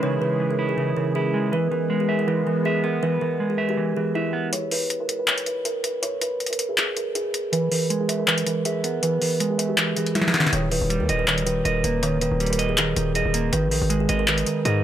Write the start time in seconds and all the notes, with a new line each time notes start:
Already playing: E3 G#3 C#4 E4 G#4
0.03 C#3 C#5
0.21 C#3 B4
0.40 E3
0.51 A#4
0.59 E4
0.69 G#4
0.77 C#3 G#4
0.97 C#3 A#4
1.15 E4 G#4
1.34 G#3
1.52 E3 G#3 B3 B4
1.71 E3 A#4
1.90 G#3
2.00 G#4
2.09 E5
2.19 A#4
2.27 E3 B4
2.47 E3 A#4
2.65 G#4 E5
2.84 B3 A#4
3.03 E3 B4
3.21 E3 A#4
3.40 G#3
3.50 G#4
3.58 E5
3.69 G4
3.77 E3
3.96 E3 G#4
4.15 E4 E5
4.33 B3
4.53 C#5, closed hi-hat
4.71 B4, open hi-hat
4.90 closed hi-hat
5.00 A#4
5.09 closed hi-hat
5.19 B4
5.28 C#5, clap, closed hi-hat
5.38 closed hi-hat
5.46 B4, closed hi-hat
5.65 A#4, closed hi-hat
5.84 B4, closed hi-hat
6.03 C#5, closed hi-hat
6.21 B4, closed hi-hat
6.40 closed hi-hat
6.46 A#4, closed hi-hat
6.53 closed hi-hat
6.59 closed hi-hat
6.69 G#4
6.78 G#4, clap, closed hi-hat
6.96 A#4, closed hi-hat
7.15 G#4, closed hi-hat
7.34 closed hi-hat
7.52 E3 B4, closed hi-hat
7.71 E3 A#4, open hi-hat
7.90 G#3, closed hi-hat
8.00 G#4
8.09 E5, closed hi-hat
8.19 A#4
8.27 E3 B4, clap, closed hi-hat
8.38 closed hi-hat
8.47 E3 A#4, closed hi-hat
8.65 G#4 E5, closed hi-hat
8.84 B3 A#4, closed hi-hat
9.03 E3 B4, closed hi-hat
9.21 E3 A#4, open hi-hat
9.40 G#3, closed hi-hat
9.50 G#4
9.58 E5, closed hi-hat
9.69 G4
9.77 E3, clap, closed hi-hat
9.96 E3 G#4, closed hi-hat
10.06 closed hi-hat
10.15 E4 E5, snare, closed hi-hat
10.22 snare
10.28 snare
10.33 B3, snare, closed hi-hat
10.40 snare
10.47 snare
10.53 D#1 D#3 C#5, closed hi-hat
10.72 D#3 B4, open hi-hat
10.81 D#1
10.90 G3, closed hi-hat
11.00 D#2 A#4
11.09 D#1 D#5, closed hi-hat
11.19 B4
11.28 D#3 C#5, clap, closed hi-hat
11.38 closed hi-hat
11.46 D#3 B4, closed hi-hat
11.65 D#1 A#4 D#5, closed hi-hat
11.84 D#1 A#3 B4, closed hi-hat
12.03 D#3 C#5, closed hi-hat
12.21 D#3 B4, closed hi-hat
12.31 D#1
12.40 G3, closed hi-hat
12.46 A#4, closed hi-hat
12.53 closed hi-hat
12.59 D#5, closed hi-hat
12.69 G#4
12.78 D#3 G#4, clap, closed hi-hat
12.96 D#1 D#3 A#4, closed hi-hat
13.15 G#4 D#5, closed hi-hat
13.25 D#1
13.34 A#3, closed hi-hat
13.53 G#1 D#3 B4, closed hi-hat
13.71 A#1 D#3 A#4, open hi-hat
13.81 G#1
13.90 G#3, closed hi-hat
14.00 G#4
14.09 G#1 D#5, closed hi-hat
14.19 A#4
14.28 D#3 B4, clap, closed hi-hat
14.38 closed hi-hat
14.46 D#3 A#4, closed hi-hat
14.65 G#2 G#4 D#5, closed hi-hat